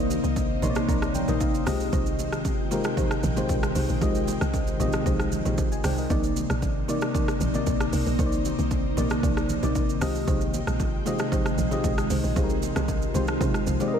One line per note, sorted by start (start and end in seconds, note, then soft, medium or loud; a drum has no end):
0.00 0.19 C2 loud
0.00 0.62 C3 loud
0.00 1.63 D#3 medium
0.00 0.62 A#3 medium
0.00 1.63 A#3 medium
0.00 6.06 C4 medium
0.00 1.69 D4 medium
0.00 0.56 D#4 medium
0.00 0.63 D#4 medium
0.00 1.63 D#4 loud
0.00 0.56 A#4 medium
0.00 1.68 C5 loud
0.00 0.57 D5 loud
0.00 0.48 D#5 loud
0.00 1.41 F5 loud
0.11 low bongo medium
0.11 shaker loud
0.24 0.58 C2 loud
0.24 shaker medium
0.36 kick medium
0.36 high bongo medium
0.36 shaker medium
0.62 0.85 A#1 loud
0.62 1.14 C3 medium
0.62 1.15 A#3 medium
0.62 0.86 D#4 medium
0.62 1.15 D#4 medium
0.62 0.87 A#4 medium
0.62 0.70 C#5 medium
0.62 0.87 D5 medium
0.62 0.87 C6 medium
0.62 low bongo medium
0.62 shaker medium
0.70 1.18 D5 loud
0.75 cross-stick loud
0.75 shaker medium
0.88 1.23 C2 medium
0.88 1.02 D#4 medium
0.88 1.02 A#4 medium
0.88 1.02 D5 loud
0.88 1.13 A#5 medium
0.88 kick loud
0.88 low conga medium
0.88 shaker medium
1.02 cross-stick medium
1.02 shaker soft
1.15 1.39 G5 medium
1.15 low conga medium
1.15 shaker loud
1.28 1.62 A#1 medium
1.28 1.65 C3 loud
1.28 1.67 A#3 medium
1.28 1.41 D#4 medium
1.28 1.67 D#4 medium
1.28 1.41 A#4 medium
1.28 1.41 D5 medium
1.28 1.66 D#5 loud
1.28 low bongo medium
1.28 shaker medium
1.40 1.65 F5 medium
1.40 kick medium
1.40 high bongo medium
1.40 shaker medium
1.55 shaker medium
1.66 1.90 C2 loud
1.66 2.50 C3 loud
1.66 6.06 D#3 medium
1.66 2.50 G#3 medium
1.66 6.06 G#3 medium
1.66 1.80 D#4 medium
1.66 2.51 F4 medium
1.66 1.81 G4 medium
1.66 2.51 G4 medium
1.66 1.81 G#4 medium
1.66 1.81 C5 medium
1.66 2.51 D#5 loud
1.66 6.06 G5 medium
1.66 cross-stick loud
1.66 open hi-hat medium
1.66 shaker loud
1.80 shaker medium
1.93 2.34 C2 loud
1.93 2.65 D#4 medium
1.93 2.65 G4 medium
1.93 2.65 G#4 medium
1.93 2.65 C5 loud
1.93 kick loud
1.93 low conga medium
1.93 shaker medium
2.06 shaker medium
2.19 low bongo medium
2.19 shaker loud
2.33 2.66 A#1 medium
2.33 cross-stick medium
2.33 shaker medium
2.45 kick medium
2.45 high bongo medium
2.45 shaker medium
2.70 3.23 C3 loud
2.70 3.23 G#3 medium
2.70 2.95 D#4 medium
2.70 3.23 F4 medium
2.70 2.95 G4 medium
2.70 3.24 G4 medium
2.70 2.95 G#4 medium
2.70 3.24 A#4 loud
2.70 2.95 C5 medium
2.70 low bongo medium
2.70 shaker loud
2.84 cross-stick loud
2.84 shaker medium
2.97 3.11 D#4 medium
2.97 3.11 G4 medium
2.97 3.11 G#4 medium
2.97 3.11 C5 loud
2.97 kick loud
2.97 low conga medium
2.97 shaker medium
3.11 cross-stick loud
3.11 shaker soft
3.23 3.46 A#1 loud
3.23 low conga medium
3.23 shaker loud
3.36 3.89 C3 loud
3.36 3.89 G#3 medium
3.36 3.50 D#4 medium
3.36 3.89 F4 medium
3.36 3.50 G4 medium
3.36 3.89 G4 medium
3.36 3.50 G#4 medium
3.36 3.50 C5 medium
3.36 3.90 C5 loud
3.36 low bongo medium
3.36 shaker medium
3.49 3.72 A#1 loud
3.49 kick medium
3.49 high bongo medium
3.49 shaker medium
3.63 cross-stick loud
3.63 shaker medium
3.75 3.87 C2 medium
3.75 3.89 D#4 medium
3.75 3.89 G4 medium
3.75 3.89 G#4 medium
3.75 3.89 C5 medium
3.75 open hi-hat medium
3.75 shaker loud
3.89 4.03 A#1 medium
3.89 shaker medium
4.01 4.36 C2 loud
4.01 4.64 C3 medium
4.01 4.65 G#3 medium
4.01 4.74 D#4 medium
4.01 4.65 F4 medium
4.01 4.74 G4 medium
4.01 4.65 G4 medium
4.01 4.74 G#4 medium
4.01 4.74 C5 loud
4.01 4.65 D#5 loud
4.01 kick loud
4.01 low conga medium
4.01 shaker medium
4.15 shaker medium
4.28 low bongo medium
4.28 shaker loud
4.41 4.75 C2 loud
4.41 cross-stick medium
4.41 shaker medium
4.54 kick medium
4.54 high bongo medium
4.54 shaker medium
4.67 shaker medium
4.79 5.03 A#1 medium
4.79 5.32 C3 medium
4.79 5.32 G#3 medium
4.79 5.04 D#4 medium
4.79 5.32 F4 medium
4.79 5.04 G4 medium
4.79 5.32 G4 medium
4.79 5.04 G#4 medium
4.79 5.04 C5 medium
4.79 5.33 D#5 loud
4.79 low bongo medium
4.79 shaker medium
4.93 cross-stick loud
4.93 shaker medium
5.06 5.41 C2 loud
5.06 5.20 D#4 medium
5.06 5.20 G4 medium
5.06 5.20 G#4 medium
5.06 5.20 C5 loud
5.06 kick loud
5.06 low conga medium
5.06 shaker medium
5.20 cross-stick medium
5.20 shaker soft
5.32 low conga medium
5.32 shaker loud
5.45 5.79 A#1 medium
5.45 5.58 D#4 medium
5.45 5.58 G4 medium
5.45 5.58 G#4 medium
5.45 5.58 C5 medium
5.45 low bongo medium
5.45 shaker medium
5.58 kick medium
5.58 high bongo medium
5.58 shaker medium
5.72 5.84 D#5 medium
5.72 5.84 G#5 medium
5.72 shaker medium
5.84 6.07 C2 loud
5.84 5.98 D#4 medium
5.84 5.98 G4 medium
5.84 5.98 G#4 medium
5.84 5.98 C5 medium
5.84 5.98 D5 medium
5.84 5.97 G5 medium
5.84 cross-stick loud
5.84 open hi-hat medium
5.84 shaker loud
5.98 6.23 A#4 medium
5.98 6.23 D#5 medium
5.98 shaker medium
6.10 6.45 C2 loud
6.10 6.73 C3 medium
6.10 9.98 D#3 medium
6.10 6.73 A#3 medium
6.10 9.98 A#3 medium
6.10 9.98 C4 medium
6.10 6.82 D#4 loud
6.10 9.98 D#4 medium
6.10 6.74 D#4 medium
6.10 6.83 A#4 medium
6.10 6.83 D5 loud
6.10 6.74 D5 loud
6.10 kick loud
6.10 low conga medium
6.10 shaker medium
6.24 shaker medium
6.37 low bongo medium
6.37 shaker loud
6.50 6.84 A#1 loud
6.50 cross-stick medium
6.50 shaker medium
6.62 kick medium
6.62 high bongo medium
6.62 shaker medium
6.88 7.40 C3 medium
6.88 7.41 A#3 medium
6.88 7.12 D#4 medium
6.88 7.41 D#4 medium
6.88 7.13 A#4 medium
6.88 7.13 D5 medium
6.88 7.41 D5 loud
6.88 low bongo medium
6.88 shaker loud
7.01 cross-stick loud
7.01 shaker medium
7.14 7.28 D#4 medium
7.14 7.28 A#4 medium
7.14 7.29 D5 loud
7.14 kick loud
7.14 low conga medium
7.14 shaker medium
7.28 cross-stick loud
7.28 shaker soft
7.41 7.63 A#1 medium
7.41 low conga medium
7.41 shaker loud
7.54 8.06 C3 medium
7.54 8.06 A#3 medium
7.54 7.67 D#4 medium
7.54 8.07 D#4 medium
7.54 7.67 A#4 medium
7.54 7.67 D5 medium
7.54 8.07 D5 loud
7.54 low bongo medium
7.54 shaker medium
7.67 7.90 A#1 medium
7.67 kick loud
7.67 high bongo medium
7.67 shaker medium
7.80 cross-stick loud
7.80 shaker medium
7.93 8.05 C2 medium
7.93 8.07 D#4 medium
7.93 8.07 A#4 medium
7.93 8.07 D5 medium
7.93 open hi-hat medium
7.93 shaker loud
8.06 8.17 A#1 medium
8.06 shaker medium
8.18 8.54 C2 loud
8.18 8.82 C3 medium
8.18 8.82 A#3 medium
8.18 8.91 D#4 loud
8.18 8.82 D#4 medium
8.18 8.91 A#4 medium
8.18 8.26 C5 medium
8.18 8.91 D5 loud
8.18 kick loud
8.18 low conga medium
8.18 shaker medium
8.26 8.86 D5 loud
8.32 shaker medium
8.45 low bongo medium
8.45 shaker loud
8.59 8.92 C2 medium
8.59 shaker medium
8.71 kick medium
8.71 high bongo medium
8.71 shaker medium
8.97 9.20 A#1 loud
8.97 9.49 C3 medium
8.97 9.49 A#3 medium
8.97 9.21 D#4 medium
8.97 9.50 D#4 medium
8.97 9.21 A#4 medium
8.97 9.21 D5 medium
8.97 9.50 D5 loud
8.97 low bongo medium
8.97 shaker medium
9.10 cross-stick loud
9.10 shaker medium
9.23 9.58 C2 medium
9.23 9.37 D#4 loud
9.23 9.37 A#4 medium
9.23 9.37 D5 loud
9.23 kick loud
9.23 low conga medium
9.23 shaker medium
9.37 cross-stick loud
9.37 shaker soft
9.49 low conga medium
9.49 shaker loud
9.62 9.97 A#1 medium
9.62 10.00 C3 medium
9.62 10.02 A#3 medium
9.62 9.76 D#4 medium
9.62 10.02 D#4 medium
9.62 9.76 A#4 medium
9.62 9.76 D5 medium
9.62 10.02 D5 loud
9.62 low bongo medium
9.62 shaker medium
9.75 kick medium
9.75 high bongo medium
9.75 shaker medium
9.89 shaker medium
10.01 10.24 C2 loud
10.01 10.85 C3 loud
10.01 13.99 D#3 medium
10.01 10.85 G#3 medium
10.01 13.99 G#3 medium
10.01 13.99 C4 medium
10.01 10.15 D#4 medium
10.01 10.85 F4 medium
10.01 10.15 G4 medium
10.01 10.86 G4 medium
10.01 10.15 G#4 medium
10.01 10.16 C5 medium
10.01 10.86 D#5 loud
10.01 12.08 G5 medium
10.01 cross-stick loud
10.01 open hi-hat medium
10.01 shaker loud
10.15 shaker medium
10.27 10.62 C2 loud
10.27 11.00 D#4 medium
10.27 11.00 G4 medium
10.27 11.00 G#4 medium
10.27 11.00 C5 loud
10.27 kick loud
10.27 low conga medium
10.27 shaker medium
10.41 shaker medium
10.54 low bongo medium
10.54 shaker loud
10.67 11.01 A#1 medium
10.67 cross-stick medium
10.67 shaker medium
10.80 kick medium
10.80 high bongo medium
10.80 shaker medium
11.05 11.58 C3 medium
11.05 11.58 G#3 medium
11.05 11.30 D#4 medium
11.05 11.58 F4 medium
11.05 11.30 G4 medium
11.05 11.58 G4 medium
11.05 11.30 G#4 medium
11.05 11.30 C5 medium
11.05 11.59 D#5 loud
11.05 low bongo medium
11.05 shaker loud
11.19 cross-stick loud
11.19 shaker medium
11.32 11.46 D#4 loud
11.32 11.46 G4 medium
11.32 11.46 G#4 medium
11.32 11.46 C5 loud
11.32 kick loud
11.32 low conga medium
11.32 shaker medium
11.46 cross-stick loud
11.46 shaker soft
11.58 11.81 A#1 medium
11.58 low conga medium
11.58 shaker loud
11.71 12.24 C3 loud
11.71 12.24 G#3 medium
11.71 11.84 D#4 medium
11.71 12.24 F4 medium
11.71 11.84 G4 medium
11.71 12.24 G4 medium
11.71 11.85 G#4 medium
11.71 11.85 C5 medium
11.71 12.24 D#5 loud
11.71 low bongo medium
11.71 shaker medium
11.84 12.07 A#1 medium
11.84 kick medium
11.84 high bongo medium
11.84 shaker medium
11.98 cross-stick loud
11.98 shaker medium
12.10 12.22 C2 medium
12.10 12.24 D#4 medium
12.10 13.99 F4 medium
12.10 12.24 G4 medium
12.10 12.24 G#4 medium
12.10 12.24 C5 medium
12.10 open hi-hat medium
12.10 shaker loud
12.24 12.35 A#1 medium
12.24 shaker medium
12.36 12.71 C2 loud
12.36 12.99 C3 medium
12.36 12.99 G#3 medium
12.36 13.08 D#4 medium
12.36 12.99 F4 medium
12.36 13.09 G4 medium
12.36 13.00 G4 medium
12.36 13.09 G#4 medium
12.36 12.43 G#4 medium
12.36 13.09 C5 loud
12.36 kick loud
12.36 low conga medium
12.36 shaker medium
12.44 13.03 A#4 loud
12.50 shaker medium
12.63 low bongo medium
12.63 shaker loud
12.76 13.10 C2 loud
12.76 cross-stick loud
12.76 low bongo medium
12.76 shaker medium
12.88 kick medium
12.88 high bongo medium
12.88 shaker medium
13.02 shaker medium
13.14 13.37 C2 medium
13.14 13.66 C3 medium
13.14 13.67 G#3 medium
13.14 13.39 D#4 medium
13.14 13.67 F4 medium
13.14 13.39 G4 medium
13.14 13.67 G4 medium
13.14 13.39 G#4 medium
13.14 13.39 C5 medium
13.14 13.67 C5 loud
13.14 low bongo medium
13.14 shaker loud
13.27 cross-stick loud
13.27 shaker medium
13.40 13.53 C3 loud
13.40 13.54 D#4 loud
13.40 13.54 G4 medium
13.40 13.55 G#4 medium
13.40 13.55 C5 loud
13.40 kick loud
13.40 low conga medium
13.40 shaker medium
13.54 cross-stick medium
13.54 shaker soft
13.67 13.79 C2 medium
13.67 low conga medium
13.67 shaker loud
13.80 13.99 C3 medium
13.80 13.99 G#3 medium
13.80 13.93 D#4 medium
13.80 13.99 F4 medium
13.80 13.93 G4 medium
13.80 13.99 G4 medium
13.80 13.93 G#4 medium
13.80 13.93 C5 medium
13.80 13.87 D5 medium
13.80 low bongo medium
13.80 shaker medium
13.88 13.99 D#5 loud
13.94 13.99 A#4 loud